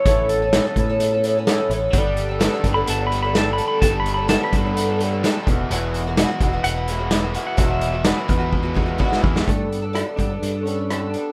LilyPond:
<<
  \new Staff \with { instrumentName = "Pedal steel guitar" } { \time 4/4 \key g \lydian \tempo 4 = 128 cis''8 a'2. r8 | r4 \tuplet 3/2 { r4 b''8 a''8 b''8 b''8 a''8 b''8 b''8 } | \tuplet 3/2 { a''8 b''8 b''8 a''8 b''8 b''8~ } b''2~ | b''8. r4 r16 fis''16 b''4. fis''16~ |
fis''16 e''8. b'2 r4 | a8 b8 e'8 d'4 cis'4 d'8 | }
  \new Staff \with { instrumentName = "Overdriven electric guitar" } { \time 4/4 \key g \lydian r1 | g4 b8 d'8 b8 g8 d'8 a'8 | g4 b8 d'8 b8 g8 d'8 e,8 | e,4 fis'8 b8 fis'8 gis8 b8 e'8 |
e,4 fis'8 b8 fis'8 gis8 b8 e'8 | r1 | }
  \new Staff \with { instrumentName = "Twelve-string acoustic guitar" } { \time 4/4 \key g \lydian <a, e b cis' a'>8. <b cis' a'>16 <a, e b cis' a'>16 <b cis' a'>16 <e b cis' a'>16 <b cis' a'>8 <b cis' a'>16 <e b cis' a'>16 <b cis' a'>16 <a, e b cis' a'>8 <e b cis' a'>8 | <g b d' a'>8. <b d' a'>16 <g b d' a'>16 <b d' a'>16 <g b d' a'>16 <b d' a'>8 <b d' a'>16 <g b d' a'>16 <b d' a'>16 <g b d' a'>8 <g b d' a'>8 | <g b d' a'>8. <b d' a'>16 <g b d' a'>16 <b d' a'>16 <g b d' a'>16 <b d' a'>8 <b d' a'>16 <g b d' a'>16 <b d' a'>16 <g b d' a'>8 <e gis b fis'>8 | <e, b, e gis b fis'>8. <e gis b fis'>16 <e, b, e gis b fis'>16 <e gis b fis'>16 <e gis b fis'>16 <e gis b fis'>8 <e gis b fis'>16 <e gis b fis'>16 <e gis b fis'>16 <e, b, e gis b fis'>16 <e gis b fis'>16 <e gis b fis'>8 |
<e, b, e gis b fis'>8. <e gis b fis'>16 <e, b, e gis b fis'>16 <e gis b fis'>16 <e gis b fis'>16 <e gis b fis'>8 <e gis b fis'>16 <e gis b fis'>16 <e gis b fis'>16 <e, b, e gis b fis'>8 <e gis b fis'>8 | <g b d' a'>8. <b d' a'>16 <g b d' a'>16 <b d' a'>16 <g b d' a'>16 <b d' a'>8 <b d' a'>16 <g b d' a'>16 <b d' a'>16 <g b d' a'>8 <g b d' a'>8 | }
  \new Staff \with { instrumentName = "Picked electric bass" } { \clef bass \time 4/4 \key g \lydian a,,4. a,2 a,,8 | g,,4. g,,8 g,,2 | g,,4. g,2 e,,8 | e,,4. e,,8 e,,2 |
e,,4. e,2 e,8 | g,4. g,8 g,2 | }
  \new DrumStaff \with { instrumentName = "Drums" } \drummode { \time 4/4 <hh bd>8 hh8 <hh sn>8 <hh bd>8 hh8 hh8 <hh sn>8 hh8 | <hh bd>8 hh8 <hh sn>8 <hh bd>8 hh8 hh8 <hh sn>8 hh8 | <hh bd>8 hh8 <hh sn>8 <hh bd>8 hh8 hh8 <hh sn>8 <hh bd>8 | hh8 hh8 <hh sn>8 <hh bd>8 hh8 hh8 <hh sn>8 hh8 |
<hh bd>8 hh8 <hh sn>8 <hh bd>8 bd8 bd8 bd16 sn16 bd16 sn16 | <hh bd>8 hh8 <hh ss>8 <hh bd>8 hh8 hh8 <hh ss>8 hh8 | }
>>